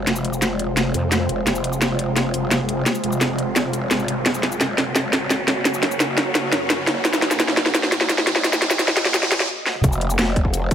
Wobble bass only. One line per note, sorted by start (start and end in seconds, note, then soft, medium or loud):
0.07 0.93 F1 medium
0.94 1.28 F2 medium
1.29 1.45 F1 medium
1.47 2.32 F1 loud
2.34 2.85 F#1 medium
3.04 3.89 F1 medium
3.91 4.24 G#1 loud
4.26 5.12 F#1 loud
5.13 5.64 G#1 loud
5.65 6.51 F#1 medium
6.52 6.86 F#2 loud
6.87 7.03 F#1 loud
7.05 7.91 F#1 loud
7.92 8.43 G#1 loud
8.44 9.30 F#1 loud
9.32 9.49 C#2 loud
9.84 10.70 F1 loud
10.71 10.74 F#1 loud